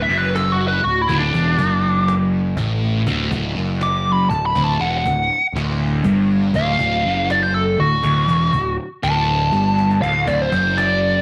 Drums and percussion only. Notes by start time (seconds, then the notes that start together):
0.11 cajon slap
0.36 cajon slap
0.86 cajon slap
1.09 cajon bass
1.34 cajon bass
1.58 cajon bass
2.08 cajon slap
2.32 cajon slap
2.57 cajon bass
2.82 cajon slap
3.07 cajon bass
3.31 cajon bass
3.57 cajon slap
3.81 cajon slap
4.31 cajon bass, cajon slap
4.55 cajon bass
5.05 cajon bass
5.32 cajon slap
5.56 cajon slap
6.04 cajon bass
6.29 cajon slap
6.54 cajon bass
6.79 cajon bass
7.04 cajon slap
7.30 cajon slap
7.53 cajon slap
7.77 cajon slap
8.03 cajon bass, cajon slap
8.28 cajon bass
8.53 cajon bass
8.78 cajon slap
9.03 cajon slap
9.52 cajon slap
9.79 cajon slap
9.91 cajon slap
10.03 cajon slap
10.27 cajon bass
10.52 cajon bass, cajon slap
10.78 cajon slap
11.02 cajon slap